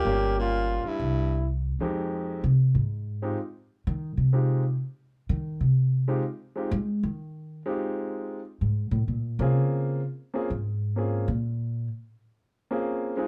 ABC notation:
X:1
M:4/4
L:1/8
Q:"Swing" 1/4=126
K:Fm
V:1 name="Flugelhorn"
G F2 =E3 z2 | z8 | z8 | z8 |
z8 | z8 | z8 |]
V:2 name="Grand piano"
[B,DFG]3 z4 [F,,A,CEG]- | [F,,A,CEG]2 z3 [A,CEFG] z2 | z2 [A,CEFG] z4 z | z [A,CEFG] z [A,CEFG] z4 |
[A,CEFG]3 z4 [B,CDFA]- | [B,CDFA]2 z [B,CDFA] z2 [B,CDFA] z | z4 z [B,CDFA]2 [A,CEFA] |]
V:3 name="Upright bass" clef=bass
G,,,3 z C,,3 z | z2 C, A,,3 z2 | E, C,3 z2 E, C,- | C,2 z2 A, E,3 |
z4 A,, =A,, B,, C, | D,2 z2 A,,3 B,,- | B,,2 z6 |]
V:4 name="Baritone saxophone" clef=bass
B,, B,,2 G,,3 z2 | z8 | z8 | z8 |
z8 | z8 | z8 |]